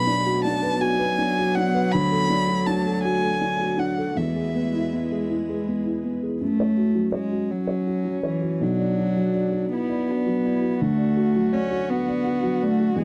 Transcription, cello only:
0.00 4.12 F#3 medium
4.17 6.17 G#3 medium
6.43 7.11 A3 medium
7.15 7.52 G#3 medium
7.51 8.24 F#3 medium
8.25 8.64 E3 medium
8.63 9.73 F#3 medium
9.74 10.82 B3 medium
10.81 11.55 A3 medium
11.53 11.91 C#4 medium
11.89 12.63 B3 medium
12.62 12.96 A3 medium
12.97 13.04 G#3 medium

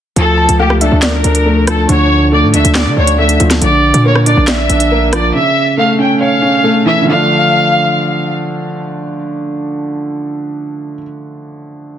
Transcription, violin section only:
0.17 0.57 A4 loud
0.60 0.77 G4 loud
0.81 0.98 A4 medium
1.02 1.63 A#4 medium
1.67 1.85 A4 medium
1.89 2.29 C#5 loud
2.33 2.50 D5 medium
2.54 2.71 E5 medium
2.75 2.93 D5 medium
2.96 3.14 C#5 medium
3.19 3.36 E5 medium
3.62 4.02 D5 medium
4.05 4.22 C#5 medium
4.26 4.43 D5 medium
4.48 5.09 E5 medium
5.13 5.30 D5 medium
5.34 5.75 E5 loud
5.78 5.95 F5 medium
5.99 6.17 G5 medium
6.20 6.81 F5 medium
6.85 7.03 E5 loud
7.07 8.32 F5 loud

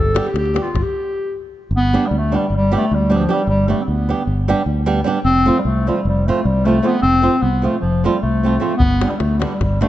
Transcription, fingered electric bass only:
0.00 0.19 G1 medium
0.34 0.58 D2 medium
0.75 0.81 G1 medium
1.71 1.95 G1 medium
2.11 2.35 D2 medium
2.50 2.75 G1 medium
2.91 3.26 D2 medium
3.47 3.72 G1 medium
3.88 4.12 D2 medium
4.27 4.52 G1 medium
4.66 5.01 D2 medium
5.25 5.49 F1 medium
5.65 5.89 C2 medium
6.05 6.29 F1 medium
6.45 6.80 C2 medium
7.03 7.27 F1 loud
7.42 7.67 C2 medium
7.83 8.07 F1 medium
8.23 8.57 C2 medium
8.80 9.04 G1 loud
9.20 9.44 D2 medium
9.61 9.84 G1 medium

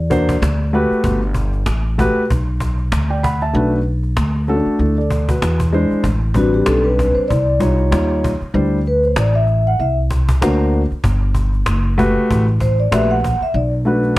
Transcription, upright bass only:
0.00 0.39 E2 medium
0.42 0.88 D2 medium
0.91 muted upright bass stroke soft
1.04 1.63 G1 loud
1.67 2.13 A1 medium
2.16 muted upright bass stroke soft
2.30 2.89 B1 medium
2.92 3.51 D2 medium
3.54 4.14 B1 loud
4.17 4.64 D2 medium
4.66 muted upright bass stroke soft
4.79 5.39 D2 medium
5.42 5.89 E2 medium
5.91 muted upright bass stroke soft
6.04 6.63 A1 loud
6.67 7.13 B1 medium
7.16 muted upright bass stroke soft
7.30 7.89 C2 medium
7.92 8.38 D#2 medium
8.41 muted upright bass stroke soft
8.54 9.14 D2 loud
9.16 9.76 A1 medium
9.79 10.39 C2 medium
10.42 10.89 D2 medium
10.91 muted upright bass stroke soft
11.04 11.63 G1 loud
11.68 12.14 F#1 medium
12.16 muted upright bass stroke soft
12.30 12.89 A1 medium
12.92 13.39 A#1 medium
13.41 muted upright bass stroke soft
13.54 14.14 B1 loud

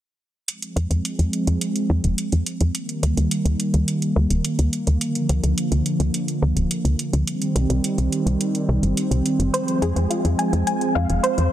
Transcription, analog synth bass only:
0.76 0.87 F2 medium
0.90 1.01 F2 medium
1.19 1.30 F2 medium
1.47 1.58 F2 medium
1.90 2.00 F2 medium
2.04 2.15 F1 medium
2.32 2.43 F2 medium
2.61 2.71 F2 medium
3.03 3.14 D#2 medium
3.17 3.28 D#2 medium
3.45 3.56 D#2 medium
3.74 3.84 D#2 medium
4.16 4.27 D#2 medium
4.30 4.41 D#1 medium
4.59 4.69 D#2 medium
4.87 4.98 D#2 medium
5.29 5.40 D2 medium
5.43 5.54 D2 medium
5.71 5.82 D2 medium
6.00 6.11 D2 medium
6.42 6.53 D2 medium
6.56 6.67 D1 medium
6.84 6.96 D2 medium
7.13 7.24 D2 medium
7.55 7.66 C2 medium
7.70 7.81 C2 medium
7.98 8.09 C2 medium
8.26 8.37 C2 medium
8.69 8.80 C2 medium
8.83 8.94 G1 medium
9.11 9.22 C2 medium
9.39 9.50 G1 medium
9.82 9.93 F2 medium
9.96 10.07 F2 medium
10.25 10.35 F2 medium
10.53 10.64 F2 medium
10.95 11.06 F2 medium
11.10 11.20 F1 medium
11.38 11.49 F2 medium

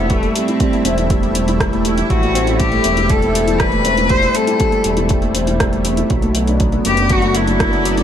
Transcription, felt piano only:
0.00 0.10 G3 medium
0.00 0.23 A3 loud
0.00 0.85 C4 medium
0.00 0.49 E4 medium
0.10 0.22 G3 medium
0.23 0.35 A3 loud
0.36 0.48 G3 medium
0.49 0.55 E4 medium
0.61 0.68 G3 medium
0.74 0.85 A3 loud
0.85 0.97 C4 loud
0.98 1.10 E4 medium
1.11 1.22 G3 medium
1.23 1.30 A3 medium
1.36 1.47 C4 medium
1.48 1.60 E4 medium
1.61 1.72 G3 medium
1.73 1.85 A3 loud
1.85 1.97 G3 medium
1.98 2.05 E4 medium
2.10 2.17 G3 medium
2.22 2.34 A3 loud
2.34 2.47 C4 loud
2.47 2.59 E4 medium
2.59 2.72 G3 medium
2.72 2.80 A3 loud
2.85 2.97 C4 medium
2.97 3.09 E4 medium
3.09 3.22 G3 medium
3.22 3.34 A3 loud
3.35 3.47 G3 medium
3.47 3.55 E4 medium
3.60 3.67 G3 medium
3.72 3.84 A3 loud
3.85 3.97 C4 loud
3.97 4.09 E4 medium
4.10 4.22 G3 medium
4.22 4.30 A3 loud
4.34 4.47 C4 medium
4.47 4.60 E4 medium
4.59 4.72 G3 medium
4.71 4.84 A3 loud
4.84 4.97 G3 medium
4.97 5.05 E4 medium
5.10 5.17 G3 medium
5.22 5.34 A3 loud
5.35 5.47 C4 medium
5.47 5.59 E4 medium
5.59 5.72 G3 medium
5.72 5.79 A3 loud
5.85 5.97 C4 medium
5.98 6.10 E4 medium
6.10 6.22 F#3 medium
6.22 6.34 A3 loud
6.36 6.47 F#3 medium
6.48 6.55 D4 medium
6.60 6.67 F#3 medium
6.72 6.84 A3 loud
6.85 6.97 B3 loud
6.98 7.10 D4 medium
7.11 7.22 F#3 medium
7.23 7.30 A3 loud
7.35 7.47 B3 medium
7.47 7.59 D4 medium
7.59 7.72 F#3 medium
7.72 7.84 A3 loud
7.84 7.97 F#3 medium
7.97 8.03 D4 medium

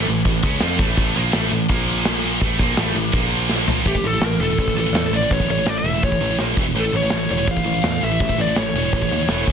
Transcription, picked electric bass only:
0.08 0.25 A1 medium
0.25 0.42 A1 medium
0.43 0.60 C#2 loud
0.62 0.79 F2 medium
0.79 0.96 A1 medium
0.97 1.14 A1 loud
1.16 1.33 A#1 loud
1.34 1.51 A1 medium
1.51 1.68 A1 medium
1.69 2.38 A#1 medium
2.41 2.58 A1 medium
2.59 2.76 A#1 loud
2.77 2.94 A1 medium
2.95 3.12 A1 medium
3.13 3.82 A#1 medium
3.86 3.99 A1 medium
4.04 4.18 A1 medium
4.20 4.35 A1 medium
4.38 4.53 E1 medium
4.59 4.72 A1 medium
4.75 4.89 A1 medium
4.93 5.07 E2 medium
5.12 5.26 A1 medium
5.31 5.44 A1 medium
5.48 5.62 A1 medium
5.66 5.80 A1 medium
5.84 5.98 E1 medium
6.03 6.17 A1 medium
6.21 6.35 A1 medium
6.39 6.53 A#1 medium
6.57 6.71 E1 medium
6.75 6.89 A1 medium
6.93 7.07 A1 medium
7.12 7.26 A1 medium
7.31 7.44 E1 medium
7.48 7.61 A1 medium
7.66 7.80 A1 medium
7.84 7.97 E2 medium
8.03 8.16 A1 medium
8.20 8.34 A1 medium
8.38 8.52 A1 medium
8.56 8.70 A1 medium
8.74 8.88 E1 medium
8.93 9.07 A1 medium
9.11 9.25 D#2 medium
9.30 9.43 E1 medium
9.47 9.52 C#2 medium

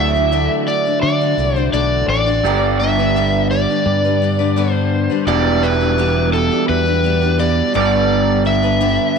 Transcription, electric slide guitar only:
0.00 0.67 E5 medium
0.68 1.01 D5 medium
1.02 1.56 D5 medium
1.56 1.72 C5 medium
1.73 2.08 D5 medium
2.09 2.82 D5 loud
2.80 3.47 E5 medium
3.51 4.71 D5 medium
4.71 5.27 C5 medium
5.28 5.64 D5 loud
5.63 6.33 B4 medium
6.33 6.69 A4 medium
6.69 7.36 B4 loud
7.40 7.75 D5 medium
7.76 8.46 D5 loud
8.47 9.19 E5 loud

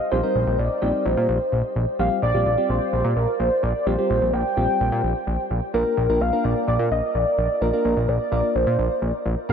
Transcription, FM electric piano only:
0.11 0.18 G3 medium
0.11 0.18 C4 medium
0.11 0.18 D#4 medium
0.11 0.18 G4 medium
0.23 0.57 G3 medium
0.23 0.57 C4 medium
0.23 0.57 D#4 medium
0.23 0.57 A#4 medium
0.82 1.37 G3 medium
0.82 1.37 C4 medium
0.82 1.36 D#4 medium
0.82 1.36 G4 medium
1.99 2.20 G3 medium
1.99 2.20 C4 medium
1.99 2.20 F4 medium
1.99 2.20 G4 medium
2.34 2.48 G3 medium
2.34 2.48 C4 medium
2.34 2.48 F4 medium
2.34 2.48 G4 medium
2.58 3.12 G3 medium
2.58 3.12 C4 medium
2.58 3.12 F4 medium
2.58 3.12 G4 medium
3.87 3.93 G3 medium
3.87 3.93 C4 medium
3.87 3.93 F4 medium
3.87 3.93 G4 medium
3.98 4.33 G3 medium
3.98 4.32 C4 medium
3.98 4.33 F4 medium
3.98 4.33 G4 medium
4.57 5.12 G3 medium
4.57 5.12 C4 medium
4.57 5.12 F4 medium
4.57 5.12 G4 medium
5.74 5.94 A#3 medium
5.74 5.95 D4 medium
5.74 5.95 F4 medium
5.74 5.95 A#4 medium
6.09 6.23 A#3 medium
6.09 6.23 D4 medium
6.09 6.23 F4 medium
6.09 6.23 A#4 medium
6.33 6.87 A#3 medium
6.33 6.87 D4 medium
6.33 6.87 F4 medium
6.33 6.87 A#4 medium
7.62 7.68 A#3 medium
7.62 7.68 D4 medium
7.62 7.68 F4 medium
7.62 7.68 A#4 medium
7.73 8.08 A#3 medium
7.73 8.07 D4 medium
7.73 8.08 F4 medium
7.73 8.07 A#4 medium
8.32 8.87 A#3 medium
8.32 8.87 D4 medium
8.32 8.87 F4 medium
8.32 8.87 A#4 medium
9.49 9.53 A#3 medium
9.49 9.53 D4 medium
9.49 9.53 G4 medium
9.49 9.53 A#4 medium

